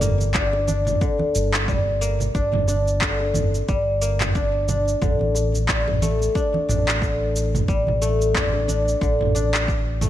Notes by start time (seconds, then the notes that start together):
Already playing: G1 G3 D4 G4
0.01 A#3, mid tom, high bongo, cabasa
0.21 high conga, cabasa
0.34 D4, kick, clap, cabasa
0.53 high bongo
0.67 D4, high conga, cabasa
0.87 mid tom, cabasa
1.01 D3, kick, cabasa
1.19 high conga
1.35 G1, cabasa
1.54 clap, cabasa
1.68 G3, kick, mid tom, cabasa
2.01 A#3, cabasa
2.20 low conga, cabasa
2.35 G1 D4, kick, cabasa
2.53 mid tom, high conga, low conga
2.68 D4, high bongo, cabasa
2.88 cabasa
3.01 D3, kick, clap, cabasa
3.20 high bongo
3.34 mid tom, high conga, cabasa
3.54 cabasa
3.68 G1 G3, kick, cabasa
4.01 A#3, cabasa
4.21 clap, mid tom, cabasa
4.35 D4, kick, cabasa
4.68 D4, high conga, low conga, cabasa
4.88 cabasa
5.01 A1 D3, kick, mid tom, cabasa
5.21 high conga
5.35 high bongo, cabasa
5.54 high conga, cabasa
5.69 G3, kick, clap, cabasa
5.88 mid tom, high bongo
6.02 A3, high conga, cabasa
6.22 cabasa
6.35 D4, kick, cabasa
6.54 high conga
6.69 A1 D4, mid tom, cabasa
6.88 clap, cabasa
7.02 D3, kick, cabasa
7.36 cabasa
7.55 mid tom, low conga, cabasa
7.68 A1 G3, kick, cabasa
7.87 high conga, low conga
8.02 A3, high bongo, cabasa
8.22 cabasa
8.35 D4, kick, clap, mid tom, cabasa
8.53 high bongo
8.68 D4, high conga, cabasa
8.88 cabasa
9.01 A1 D3, kick, cabasa
9.21 mid tom
9.35 D4, cabasa
9.54 clap, cabasa
9.68 G4, kick, cabasa
10.01 A3, mid tom, high conga, low conga, cabasa